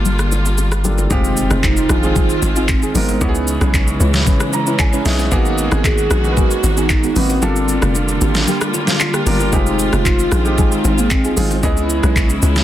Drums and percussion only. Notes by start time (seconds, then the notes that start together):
0.05 low conga, shaker
0.19 cross-stick, shaker
0.32 low bongo, shaker
0.46 high bongo, shaker
0.58 high bongo, shaker
0.72 cross-stick, shaker
0.84 high bongo, low conga, shaker
0.98 low bongo, shaker
1.11 kick, low conga, shaker
1.24 shaker
1.37 shaker
1.51 cross-stick, shaker
1.63 kick, clap, high bongo, shaker
1.77 shaker
1.89 cross-stick, shaker
2.03 shaker
2.16 kick, low conga, shaker
2.30 shaker
2.42 low bongo, shaker
2.56 shaker
2.68 kick, clap, high bongo, shaker
2.82 shaker
2.95 open hi-hat, low conga, shaker
3.09 low bongo, shaker
3.21 kick, low conga, shaker
3.35 shaker
3.48 shaker
3.61 cross-stick, shaker
3.74 kick, clap, high bongo, shaker
3.88 shaker
4.00 shaker
4.14 snare, shaker
4.26 kick, low conga, shaker
4.40 cross-stick, shaker
4.53 low bongo, shaker
4.67 shaker
4.79 kick, clap, high bongo, shaker
4.93 shaker
5.06 snare, open hi-hat, low conga, shaker
5.19 low bongo, shaker
5.32 kick, low conga, shaker
5.45 shaker
5.58 shaker
5.72 cross-stick, shaker
5.84 kick, clap, high bongo, shaker
5.98 shaker
6.11 cross-stick, shaker
6.24 shaker
6.37 kick, low conga, shaker
6.51 shaker
6.64 low bongo, shaker
6.77 shaker
6.89 kick, clap, high bongo, shaker
7.04 shaker
7.16 open hi-hat, low conga, shaker
7.30 low bongo, shaker
7.42 low conga, shaker
7.56 shaker
7.69 shaker
7.82 cross-stick, shaker
7.95 high bongo, shaker
8.08 shaker
8.21 shaker
8.35 snare, shaker
8.48 low conga, shaker
8.61 cross-stick, shaker
8.74 low bongo, shaker
8.87 snare, shaker
9.00 clap, high bongo, shaker
9.14 cross-stick, shaker
9.27 open hi-hat, low conga, shaker
9.40 low bongo, shaker
9.53 kick, low conga, shaker
9.66 shaker
9.79 shaker
9.93 cross-stick, shaker
10.05 kick, clap, high bongo, shaker
10.19 shaker
10.32 cross-stick, shaker
10.45 shaker
10.58 kick, low conga, shaker
10.72 shaker
10.85 low bongo, shaker
10.98 shaker
11.10 kick, clap, high bongo, shaker
11.24 shaker
11.37 open hi-hat, low conga, shaker
11.51 low bongo, shaker
11.63 kick, low conga, shaker
11.77 shaker
11.90 shaker
12.03 cross-stick, shaker
12.16 kick, clap, high bongo, shaker
12.30 shaker
12.42 shaker
12.56 snare, shaker